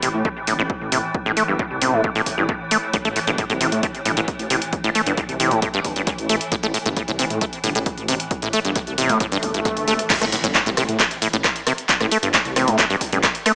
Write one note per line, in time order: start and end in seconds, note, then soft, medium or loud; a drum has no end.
0.00 0.12 A1 medium
0.00 10.15 A2 medium
0.00 0.09 C3 medium
0.00 10.15 E3 medium
0.00 open hi-hat loud
0.14 0.23 A2 medium
0.25 0.29 A3 medium
0.25 kick loud
0.47 0.57 G1 medium
0.47 0.54 A2 medium
0.47 open hi-hat loud
0.59 0.68 A1 medium
0.59 0.62 A2 loud
0.70 kick loud
0.81 0.90 A1 medium
0.92 1.01 A1 medium
0.92 0.98 C3 medium
0.92 open hi-hat loud
1.15 kick loud
1.26 1.35 A1 loud
1.26 1.32 A2 loud
1.37 1.43 A3 medium
1.37 open hi-hat loud
1.48 1.57 G1 medium
1.48 1.54 G2 medium
1.59 1.63 A2 medium
1.59 kick loud
1.71 1.79 C2 medium
1.82 1.91 A1 medium
1.82 1.95 C3 medium
1.82 open hi-hat loud
1.93 2.02 A2 medium
1.93 2.02 A2 loud
2.04 2.10 A2 medium
2.04 kick loud
2.15 2.22 A2 medium
2.15 open hi-hat medium
2.26 kick medium
2.26 open hi-hat loud
2.38 2.47 A1 loud
2.38 2.44 G2 medium
2.49 2.53 A2 medium
2.49 kick loud
2.71 2.78 A3 medium
2.71 open hi-hat loud
2.94 2.97 A2 loud
2.94 kick loud
2.94 closed hi-hat medium
3.05 3.14 A1 loud
3.05 3.09 A3 loud
3.05 closed hi-hat medium
3.16 3.20 A2 medium
3.16 open hi-hat loud
3.27 3.36 G1 medium
3.27 3.31 A2 loud
3.27 closed hi-hat soft
3.38 3.45 A2 medium
3.38 kick loud
3.38 closed hi-hat medium
3.50 3.59 C2 medium
3.50 3.53 A2 loud
3.50 closed hi-hat soft
3.61 3.70 A1 medium
3.61 3.67 C3 medium
3.61 open hi-hat loud
3.72 3.81 A2 medium
3.72 closed hi-hat medium
3.83 3.87 A3 medium
3.83 kick loud
3.83 closed hi-hat medium
3.95 closed hi-hat soft
4.05 4.15 G1 medium
4.05 4.12 A2 medium
4.05 open hi-hat loud
4.17 4.26 A1 medium
4.17 4.21 A2 loud
4.17 closed hi-hat soft
4.28 kick loud
4.28 closed hi-hat medium
4.39 4.48 A1 loud
4.39 closed hi-hat medium
4.50 4.59 A1 medium
4.50 4.57 C3 medium
4.50 open hi-hat loud
4.62 closed hi-hat soft
4.73 kick loud
4.73 closed hi-hat medium
4.84 4.93 A1 loud
4.84 4.90 A2 loud
4.84 closed hi-hat medium
4.95 5.01 A3 medium
4.95 open hi-hat loud
5.06 5.15 G1 medium
5.06 5.13 G2 medium
5.06 closed hi-hat soft
5.17 5.21 A2 medium
5.17 kick loud
5.17 closed hi-hat medium
5.29 5.38 C2 medium
5.29 closed hi-hat soft
5.40 5.49 A1 medium
5.40 5.53 C3 medium
5.40 open hi-hat loud
5.51 5.60 A2 medium
5.51 5.60 A2 loud
5.51 closed hi-hat soft
5.62 5.69 A2 medium
5.62 kick loud
5.62 closed hi-hat medium
5.74 5.80 G2 loud
5.74 closed hi-hat soft
5.85 5.94 G1 medium
5.85 kick medium
5.85 open hi-hat medium
5.96 6.05 A1 loud
5.96 6.02 G2 medium
5.96 closed hi-hat soft
6.07 6.11 A2 medium
6.07 kick loud
6.07 closed hi-hat medium
6.18 6.27 A1 medium
6.18 closed hi-hat medium
6.29 6.39 A1 medium
6.29 6.36 A3 medium
6.29 open hi-hat loud
6.41 closed hi-hat medium
6.52 6.56 A2 loud
6.52 kick loud
6.52 closed hi-hat medium
6.63 6.72 A1 loud
6.63 6.67 A3 loud
6.63 closed hi-hat medium
6.74 6.78 A2 medium
6.74 open hi-hat loud
6.86 6.94 G1 medium
6.86 6.89 A2 loud
6.86 closed hi-hat medium
6.97 7.03 A2 medium
6.97 kick loud
6.97 closed hi-hat medium
7.08 7.17 C2 medium
7.08 7.12 A2 loud
7.08 closed hi-hat soft
7.19 7.28 A1 medium
7.19 7.25 C3 medium
7.19 open hi-hat loud
7.30 7.39 A2 medium
7.30 closed hi-hat soft
7.41 7.45 A3 medium
7.41 kick loud
7.41 closed hi-hat medium
7.53 closed hi-hat soft
7.64 7.73 G1 medium
7.64 7.70 A2 medium
7.64 open hi-hat loud
7.75 7.84 A1 medium
7.75 7.79 A2 loud
7.75 closed hi-hat soft
7.86 kick loud
7.86 closed hi-hat medium
7.98 8.06 A1 medium
7.98 closed hi-hat medium
8.08 8.18 A1 medium
8.08 8.15 C3 medium
8.08 open hi-hat loud
8.20 closed hi-hat medium
8.31 kick loud
8.31 closed hi-hat medium
8.42 8.51 A1 loud
8.42 8.48 A2 loud
8.42 closed hi-hat medium
8.53 8.60 A3 medium
8.53 open hi-hat loud
8.65 8.74 G1 loud
8.65 8.71 G2 medium
8.65 closed hi-hat medium
8.76 8.79 A2 medium
8.76 kick loud
8.76 closed hi-hat medium
8.87 8.96 C2 medium
8.87 closed hi-hat medium
8.98 9.07 A1 medium
8.98 9.11 C3 medium
8.98 open hi-hat loud
9.09 9.18 A2 medium
9.09 9.19 A2 loud
9.09 closed hi-hat medium
9.20 9.27 A2 medium
9.20 kick loud
9.20 closed hi-hat medium
9.20 swell medium
9.32 9.38 G2 loud
9.32 open hi-hat medium
9.43 9.52 G1 medium
9.43 kick medium
9.43 open hi-hat loud
9.54 9.63 A1 medium
9.54 9.60 G2 medium
9.54 closed hi-hat medium
9.65 9.69 A2 medium
9.65 kick loud
9.65 closed hi-hat medium
9.77 9.85 G1 loud
9.77 closed hi-hat medium
9.88 9.97 G1 medium
9.88 9.94 A3 medium
9.88 open hi-hat loud
9.99 closed hi-hat medium
10.10 10.14 A2 loud
10.10 kick loud
10.10 clap loud
10.10 closed hi-hat medium
10.10 crash loud
10.10 ride medium
10.10 impact medium
10.21 10.30 A1 loud
10.21 10.25 A3 loud
10.21 cross-stick medium
10.21 closed hi-hat medium
10.32 10.36 A2 medium
10.32 open hi-hat loud
10.44 10.53 G1 medium
10.44 10.47 A2 loud
10.44 closed hi-hat medium
10.55 10.61 A2 medium
10.55 kick loud
10.55 clap loud
10.55 closed hi-hat medium
10.55 ride medium
10.66 10.75 C2 medium
10.66 10.70 A2 loud
10.66 closed hi-hat medium
10.77 10.86 A1 medium
10.77 10.84 C3 medium
10.77 cross-stick medium
10.77 open hi-hat loud
10.89 10.97 A2 medium
10.89 closed hi-hat medium
11.00 11.03 A3 medium
11.00 kick loud
11.00 clap loud
11.00 closed hi-hat medium
11.00 ride medium
11.11 closed hi-hat medium
11.22 11.28 A2 medium
11.22 open hi-hat loud
11.33 11.42 A1 loud
11.33 11.37 A2 loud
11.33 closed hi-hat medium
11.44 kick loud
11.44 cross-stick medium
11.44 clap loud
11.44 closed hi-hat medium
11.44 ride medium
11.56 closed hi-hat medium
11.67 11.73 C3 medium
11.67 cross-stick medium
11.67 open hi-hat loud
11.78 closed hi-hat medium
11.89 kick loud
11.89 clap loud
11.89 closed hi-hat medium
11.89 ride medium
12.01 12.09 A1 loud
12.01 12.07 A2 loud
12.01 cross-stick medium
12.01 closed hi-hat medium
12.11 12.18 A3 medium
12.11 open hi-hat loud
12.23 12.32 G1 medium
12.23 12.29 G2 medium
12.23 closed hi-hat medium
12.34 12.38 A2 medium
12.34 kick loud
12.34 clap loud
12.34 closed hi-hat medium
12.34 ride medium
12.45 12.54 C2 medium
12.45 closed hi-hat medium
12.56 12.65 A1 medium
12.56 12.69 C3 medium
12.56 cross-stick medium
12.56 open hi-hat loud
12.68 12.77 A2 loud
12.68 12.77 A2 medium
12.68 closed hi-hat medium
12.79 kick loud
12.79 clap loud
12.79 closed hi-hat medium
12.79 ride medium
12.90 12.96 G2 loud
12.90 open hi-hat medium
13.01 kick medium
13.01 open hi-hat loud
13.12 13.21 A1 loud
13.12 13.19 G2 medium
13.12 closed hi-hat medium
13.23 13.27 A2 medium
13.23 kick loud
13.23 cross-stick medium
13.23 clap loud
13.23 closed hi-hat medium
13.23 ride medium
13.35 closed hi-hat medium
13.46 13.52 A3 medium
13.46 cross-stick medium
13.46 open hi-hat loud